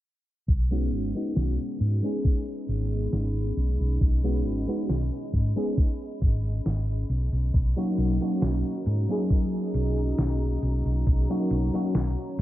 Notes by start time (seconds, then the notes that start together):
0.48 B1 C#4 G#4 D#5 B5, kick, closed hi-hat
0.71 G#3 B3 C#4 D#4 F#4, closed hi-hat
0.92 G#1, closed hi-hat
1.15 G#3 B3 C#4 D#4 F#4, closed hi-hat
1.36 B1, snare, closed hi-hat
1.60 closed hi-hat
1.80 G#2, closed hi-hat
2.02 G#3 B3 C#4 D#4 G#4, closed hi-hat
2.25 kick, closed hi-hat
2.48 closed hi-hat
2.69 G#1, closed hi-hat
2.92 closed hi-hat
3.13 G#1, snare, closed hi-hat
3.36 closed hi-hat
3.57 B1, closed hi-hat
3.80 B1, closed hi-hat
4.01 B1, kick, closed hi-hat
4.24 G#3 B3 C#4 D#4 F#4, closed hi-hat
4.45 G#1, closed hi-hat
4.67 G#3 B3 C#4 D#4 F#4, muted fingered electric bass stroke, closed hi-hat
4.89 B1, snare, closed hi-hat
5.12 closed hi-hat
5.34 G#2, kick, closed hi-hat
5.56 G#3 B3 C#4 D#4 G#4, closed hi-hat
5.78 kick, closed hi-hat
6.01 closed hi-hat
6.22 G#1, kick, closed hi-hat
6.45 closed hi-hat
6.66 G#1, snare, closed hi-hat
6.89 closed hi-hat
7.10 B1, closed hi-hat
7.33 B1, closed hi-hat
7.54 B1 C#4 F#4 D#5 A#5, kick, closed hi-hat
7.77 F#3 A#3 C#4 D#4 F#4, closed hi-hat
7.98 B1, closed hi-hat
8.21 F#3 A#3 C#4 D#4 F#4, closed hi-hat
8.42 B1, snare, closed hi-hat
8.65 closed hi-hat
8.86 G#2, closed hi-hat
9.08 F#3 A#3 C#4 D#4 G#4, closed hi-hat
9.30 kick, closed hi-hat
9.53 closed hi-hat
9.74 B1, closed hi-hat
9.97 closed hi-hat
10.18 B1, snare, closed hi-hat
10.42 closed hi-hat
10.63 B1, closed hi-hat
10.86 B1, closed hi-hat
11.07 B1 C#5, kick, closed hi-hat
11.29 F#3 A#3 C#4 D#4 F#4, closed hi-hat
11.51 B1, closed hi-hat
11.73 F#3 A#3 C#4 D#4 F#4, muted fingered electric bass stroke, closed hi-hat
11.95 B1, snare, closed hi-hat
12.18 closed hi-hat